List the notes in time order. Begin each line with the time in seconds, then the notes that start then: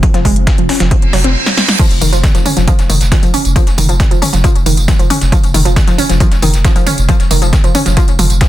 Already playing: F3 C4
0.03 F3, kick, closed hi-hat
0.14 F1 F3, snare, closed hi-hat
0.25 F1 G#3, kick, closed hi-hat, open hi-hat
0.36 F1, closed hi-hat
0.47 F3, kick, snare, closed hi-hat
0.58 F1 F3, closed hi-hat
0.69 C#4, snare, closed hi-hat, open hi-hat
0.80 F1 F3, snare, closed hi-hat
0.91 F3, kick, closed hi-hat, reverse cymbal
1.02 F1, closed hi-hat
1.13 F1 F#3, snare, closed hi-hat, open hi-hat
1.24 F1 C4, snare, closed hi-hat
1.46 snare
1.57 snare
1.69 snare
1.79 F3, kick, closed hi-hat, mid tom, crash, tambourine
1.91 F1, closed hi-hat, tambourine
2.01 F1 D#3, closed hi-hat, open hi-hat, mid tom, tambourine
2.12 F1 F3, closed hi-hat, tambourine
2.24 kick, snare, closed hi-hat, mid tom, tambourine
2.34 F1 F3, snare, closed hi-hat, tambourine
2.46 C#4, closed hi-hat, open hi-hat, mid tom, tambourine
2.57 F1 F3, snare, closed hi-hat, tambourine
2.68 F3, kick, closed hi-hat, mid tom, tambourine
2.79 F1, snare, closed hi-hat, tambourine
2.90 F1 D#3, closed hi-hat, open hi-hat, mid tom, tambourine
3.01 F1, snare, closed hi-hat, tambourine
3.12 F3, kick, snare, closed hi-hat, mid tom, tambourine
3.23 F1 F3, closed hi-hat, tambourine
3.34 C#4, closed hi-hat, open hi-hat, mid tom, tambourine
3.45 F1, closed hi-hat, tambourine
3.56 F3, kick, closed hi-hat, mid tom, tambourine
3.67 F1, snare, closed hi-hat, tambourine
3.78 F1 D#3, closed hi-hat, open hi-hat, mid tom, tambourine
3.89 F1 F3, closed hi-hat, tambourine
4.00 kick, snare, closed hi-hat, mid tom, tambourine
4.11 F1 F3, closed hi-hat, tambourine
4.22 C#4, closed hi-hat, open hi-hat, mid tom, tambourine
4.33 F1 F3, snare, closed hi-hat, tambourine
4.44 F3, kick, closed hi-hat, mid tom, tambourine
4.55 F1, closed hi-hat, tambourine
4.66 F1 D#3, closed hi-hat, open hi-hat, mid tom, tambourine
4.77 F1, closed hi-hat, tambourine
4.88 F3, kick, snare, closed hi-hat, mid tom, tambourine
4.99 F1 F3, closed hi-hat, tambourine
5.10 C#4, closed hi-hat, open hi-hat, mid tom, tambourine
5.21 F1, snare, closed hi-hat, tambourine
5.32 F3, kick, closed hi-hat, mid tom, tambourine
5.43 F1, closed hi-hat, tambourine
5.54 F1 D#3, closed hi-hat, open hi-hat, mid tom, tambourine
5.65 F1 F3, closed hi-hat, tambourine
5.76 kick, snare, closed hi-hat, mid tom, tambourine
5.87 F1 F3, snare, closed hi-hat, tambourine
5.98 C#4, closed hi-hat, open hi-hat, mid tom, tambourine
6.09 F1 F3, snare, closed hi-hat, tambourine
6.20 F3, kick, closed hi-hat, mid tom, tambourine
6.31 F1, snare, closed hi-hat, tambourine
6.42 F1 D#3, closed hi-hat, open hi-hat, mid tom, tambourine
6.54 F1, snare, closed hi-hat, tambourine
6.65 F3, kick, snare, closed hi-hat, mid tom, tambourine
6.76 F1 F3, closed hi-hat, tambourine
6.86 C#4, closed hi-hat, open hi-hat, mid tom, tambourine
6.98 F1, closed hi-hat, tambourine
7.09 F3, kick, closed hi-hat, mid tom, tambourine
7.20 F1, snare, closed hi-hat, tambourine
7.31 F1 D#3, closed hi-hat, open hi-hat, mid tom, tambourine
7.42 F1 F3, closed hi-hat, tambourine
7.53 kick, snare, closed hi-hat, mid tom, tambourine
7.64 F1 F3, closed hi-hat, tambourine
7.75 C#4, closed hi-hat, open hi-hat, mid tom, tambourine
7.86 F1 F3, snare, closed hi-hat, tambourine
7.97 F3, kick, closed hi-hat, mid tom, tambourine
8.08 F1, closed hi-hat, tambourine
8.19 F1 F3, closed hi-hat, open hi-hat, mid tom, tambourine
8.30 F1, closed hi-hat, tambourine
8.41 F3, kick, snare, closed hi-hat, mid tom, tambourine